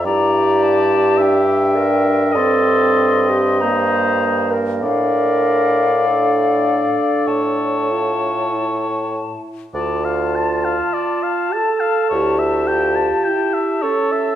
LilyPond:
<<
  \new Staff \with { instrumentName = "Flute" } { \time 4/4 \key d \minor \tempo 4 = 50 bes''8 a''8 g''4 c'''4 bes''8. r16 | f''2 a''4. r8 | a''1 | }
  \new Staff \with { instrumentName = "Oboe" } { \time 4/4 \key d \minor d''4 e''4 ees''4.~ ees''16 r16 | d''2 cis''4.~ cis''16 r16 | d''16 f''16 a''16 f''16 d''16 f''16 a''16 f''16 cis''16 e''16 g''16 a''16 g''16 e''16 cis''16 e''16 | }
  \new Staff \with { instrumentName = "Clarinet" } { \time 4/4 \key d \minor g'4. bes'8 a'8. g'16 c''8. bes'16 | bes'4 a'2~ a'8 r8 | f'4. a'8 g'4. a'8 | }
  \new Staff \with { instrumentName = "French horn" } { \time 4/4 \key d \minor e'4 d'4 c'4 bes4 | d'4 d'4. f'8 e'4 | r2 e'8 f'8 e'8 cis'8 | }
  \new Staff \with { instrumentName = "Bassoon" } { \clef bass \time 4/4 \key d \minor g,2 g,2 | a,4.~ a,16 r16 a,4. r8 | d,4 r4 d,4 r4 | }
>>